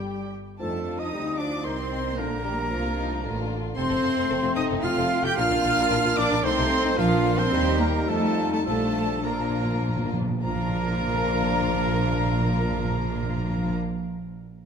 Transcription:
Already playing: double bass section G1, french horn section G3, viola section G3, cello section G3, bassoon G3, trumpet G4, clarinet G4, violin section G4 G5, cor anglais G4, flute G5
0.58 double bass section F2, timpani F2, bassoon F3, viola section A3, cello section A3, french horn section C4 D#4, violin section D4 F4 A5, clarinet F4, cor anglais A4, trumpet A4, flute A5
0.99 cello section D#4, viola section D#4, trumpet D#5, cor anglais D#5, flute D#6, violin section D#6
1.12 double bass section D2, bassoon G3, violin section C4, clarinet D#4
1.38 bassoon F3, cello section D4, viola section D4, violin section F4 D6, trumpet D5, cor anglais D5, flute D6
1.64 double bass section C2, bassoon D#3, viola section C4, cello section C4, violin section D#4 C6, clarinet D#4, trumpet C5, cor anglais C5, flute C6
1.91 clarinet C4, violin section D#4
2.17 double bass section A#1, bassoon D3, cello section A#3, viola section A#3, french horn section A#3 D4, violin section D4 F4 A#5, clarinet D4, cor anglais A#4, trumpet A#4, flute A#5
2.44 bassoon G3, violin section G4
2.70 double bass section C2, bassoon F3, clarinet D4, violin section F4
2.98 violin section D#4
3.23 double bass section A1, bassoon D3, violin section D4 F4, clarinet F4
3.76 double bass section F1, bassoon A3, french horn section A3 C4, clarinet C4, violin section C4 A4 C6, viola section C4, cello section C4, trumpet C5, cor anglais C5, flute C6
3.90 double bass section F1, violin section C4 A4
4.03 double bass section F1, violin section A3 F4
4.16 double bass section F1, violin section C4 A4
4.30 double bass section F1, violin section C4 A4
4.43 double bass section F1, violin section A3 F4
4.56 double bass section F1, violin section C4 A4 D#6, viola section D#4, cello section D#4, trumpet D#5, cor anglais D#5, flute D#6
4.70 double bass section F1, violin section C4 A4
4.83 double bass section F1, violin section A3 F4 F6, viola section F4, cello section F4, trumpet F5, cor anglais F5, flute F6
4.97 double bass section F1, violin section C4 A4
5.23 double bass section F1, violin section A3 F4 G6, viola section G4, cello section G4, cor anglais G5, trumpet G5, flute G6
5.36 double bass section A#1, french horn section A#3 D4, bassoon A#3, clarinet D4, violin section D4 A#4 F6, viola section F4, cello section F4, trumpet F5, cor anglais F5, flute F6
5.50 double bass section A#1, violin section D4 A#4
5.64 double bass section A#1, violin section A#3 F4
5.77 double bass section A#1, violin section D4 A#4
5.90 double bass section A#1, violin section D4 A#4
6.05 double bass section A#1, violin section A#3 F4
6.17 double bass section A#1, viola section D4, violin section D4 A#4 D6, cello section D4, trumpet D5, cor anglais D5, flute D6
6.31 double bass section A#1, violin section D4 A#4
6.44 double bass section C2, french horn section A3 D#4, bassoon A3, viola section C4, cello section C4, violin section C4 D#4 C6, clarinet D#4, trumpet C5, cor anglais C5, flute C6
6.57 double bass section C2, violin section D#4 A4
6.85 double bass section C2, violin section C4 D#4
6.98 double bass section A#1, timpani A#2, viola section F3, cello section F3, bassoon A#3, french horn section A#3 D4, clarinet D4, violin section D4 A#4 F5, trumpet F4, cor anglais F4, flute F5
7.24 violin section A4
7.38 viola section C4, cello section C4, trumpet C5, cor anglais C5, violin section C6, flute C6
7.52 double bass section D#2, bassoon G3, french horn section G3 D#4, violin section D#4 G4, clarinet D#4
7.79 viola section A#3, cello section A#3, trumpet A#4, cor anglais A#4, flute A#5, violin section A#5
8.08 double bass section F2, bassoon F3, viola section A3, cello section A3, violin section D#4 F4 A5, clarinet D#4, trumpet A4, cor anglais A4, flute A5
8.50 viola section A3, cello section A3, trumpet A4, cor anglais A4, flute A5, violin section A5
8.64 double bass section A#1, timpani A#2, bassoon F3, viola section A3, cello section A3, violin section D4 F4 A5, clarinet D4, french horn section D4, trumpet A4, cor anglais A4, flute A5
8.82 timpani A#2
8.99 timpani A#2
9.07 timpani A#2
9.15 timpani A#2
9.23 timpani A#2, bassoon F3, french horn section F3, cello section A#3, viola section A#3, violin section D4 F4 A#5, clarinet D4, trumpet A#4, cor anglais A#4, flute A#5
9.40 timpani A#2
9.48 timpani A#2
9.57 timpani A#2
9.65 timpani A#2
9.73 timpani A#2
9.81 timpani A#2
9.89 timpani A#2
9.97 timpani A#2
10.05 timpani A#2
10.13 timpani A#2
10.22 timpani A#2
10.29 timpani A#2
10.42 double bass section A#1, timpani A#2, french horn section F3 D4, bassoon F3, cello section A#3, violin section D4 F4 A#5, clarinet D4, viola section A#4, cor anglais A#4, trumpet A#4, flute A#5
10.49 timpani A#2
10.55 timpani A#2
10.62 timpani A#2
10.69 timpani A#2
10.75 timpani A#2
10.81 timpani A#2
10.88 timpani A#2
10.95 timpani A#2
11.02 timpani A#2
11.08 timpani A#2
11.14 timpani A#2
11.21 timpani A#2
11.27 timpani A#2
11.35 timpani A#2
11.41 timpani A#2
11.47 timpani A#2
11.54 timpani A#2
11.61 timpani A#2
11.68 timpani A#2
11.74 timpani A#2
11.81 timpani A#2
11.87 timpani A#2
11.93 timpani A#2
11.99 timpani A#2
12.06 timpani A#2
12.12 timpani A#2
12.19 timpani A#2
12.26 timpani A#2
12.33 timpani A#2
12.40 timpani A#2
12.46 timpani A#2
12.52 timpani A#2
12.58 timpani A#2
12.65 timpani A#2
12.72 timpani A#2
12.78 timpani A#2
12.84 timpani A#2
12.90 timpani A#2
12.96 timpani A#2
13.03 timpani A#2
13.09 timpani A#2
13.16 timpani A#2
13.23 timpani A#2
13.29 timpani A#2
13.36 timpani A#2
13.43 timpani A#2
13.50 timpani A#2
13.56 timpani A#2
13.63 timpani A#2
13.70 timpani A#2

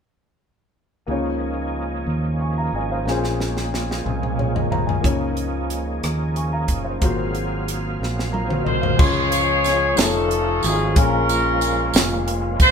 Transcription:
1.07 fingered electric bass C#2, upright piano C#3 A#3 D#4 F4, tonewheel organ F3 A#3 C#4 D#4 G#4
1.11 upright piano C#5
2.06 fingered electric bass D#2
2.41 upright piano G#5 C#6
2.58 upright piano F5 A#5
2.73 fingered electric bass G#1, upright piano D#5 G#5
2.91 upright piano C5 F5
3.05 fingered electric bass A#1, upright piano A#2 A#3 C#4, tonewheel organ G#3, snare
3.10 upright piano G#4 C5
3.24 snare
3.40 snare
3.57 snare
3.74 snare
3.91 snare
4.06 fingered electric bass C2, mid tom
4.23 mid tom
4.39 upright piano G#4 C#5, mid tom
4.55 upright piano A#4 D#5, floor tom
4.70 fingered electric bass C2, upright piano C5 F5 A#5, floor tom
4.87 upright piano D#5 G#5, floor tom
5.01 fingered electric bass C#2, upright piano C#3 A#3 D#4 F4, tonewheel organ D#4, kick, closed hi-hat
5.05 upright piano C#5
5.37 closed hi-hat
5.70 cross-stick, closed hi-hat
6.03 fingered electric bass D#2, cross-stick, closed hi-hat
6.36 upright piano G#5 C#6, closed hi-hat
6.53 upright piano F5 A#5
6.68 fingered electric bass F#1, kick, closed hi-hat
6.84 upright piano C5 F5
7.00 fingered electric bass G#1, upright piano G#2 A#3 F4 F#4, tonewheel organ F#3 C4 G#4 F5, kick, closed hi-hat
7.04 upright piano C5
7.35 closed hi-hat
7.68 cross-stick, closed hi-hat
8.01 fingered electric bass A#1, snare
8.19 snare
8.33 upright piano F4 A#4 A#5, high tom
8.49 upright piano F#4 C5, mid tom
8.65 fingered electric bass C2, upright piano A#4 D#5, horn section C5, mid tom
8.82 upright piano C5 F5, floor tom
8.97 fingered electric bass C#2, upright piano C#3 G#3 C#4 F4 C6, tonewheel organ F3 G#3 C#4 G#4, horn section F4 G#4 C#5, kick, crash
9.32 closed hi-hat, tambourine
9.64 snare, closed hi-hat, tambourine
9.95 fingered electric bass F1, upright piano G#3 D#4 F4 C#5, tonewheel organ A3 D#4 F4, horn section A4, snare, closed hi-hat, tambourine
9.99 upright piano A3, horn section C#4 D#4
10.31 closed hi-hat
10.63 fingered electric bass G#1, horn section G#4, closed hi-hat, tambourine
10.95 fingered electric bass A#1, upright piano A#2 G#3 C#4 F4, tonewheel organ G#3 A#3, horn section C#4 F4 A#4, kick, closed hi-hat
11.00 upright piano A#4
11.29 closed hi-hat, tambourine
11.61 closed hi-hat, tambourine
11.93 fingered electric bass F1, snare, closed hi-hat, tambourine
12.28 closed hi-hat
12.60 fingered electric bass C#2, horn section C5, kick, closed hi-hat, tambourine

